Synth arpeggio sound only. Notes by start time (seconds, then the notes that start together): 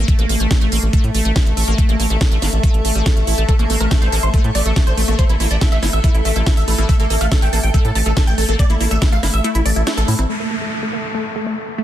0.08 A3
0.19 A#3
0.29 A#3
0.40 A3
0.61 A3
0.72 A#3
0.93 A3
1.15 A3
1.25 A3
1.57 A3
1.68 A#3
1.78 A3
1.89 A#3
2.00 A#3
2.10 A3
2.32 A3
2.42 A#3
2.63 A3
2.85 A3
2.95 G3
3.27 E4
3.38 A3
3.49 A3
3.59 A#3
3.70 A#3
3.80 A3
4.02 A3
4.12 A#3
4.34 A3
4.55 A3
4.66 A3
4.97 A3
5.08 A#3
5.19 A3
5.29 A#3
5.40 A#3
5.51 A3
5.72 A3
5.83 A#3
6.04 A3
6.25 A3
6.36 A3
6.68 A3
6.78 A#3
6.89 A3
7.00 A#3
7.10 A#3
7.21 A3
7.42 A3
7.53 A#3
7.74 A3
7.95 A3
8.06 A3
8.38 A3
8.49 A#3
8.59 A3
8.70 A#3
8.81 A#3
8.91 A3
9.12 A3
9.23 A#3
9.44 A3
9.66 A3
9.87 A3
9.98 A4
10.19 C4
10.29 A3
10.40 A#3
10.51 A#3
10.61 A3
10.83 A3
10.93 A#3
11.15 A3
11.36 A3
11.46 A3
11.78 A3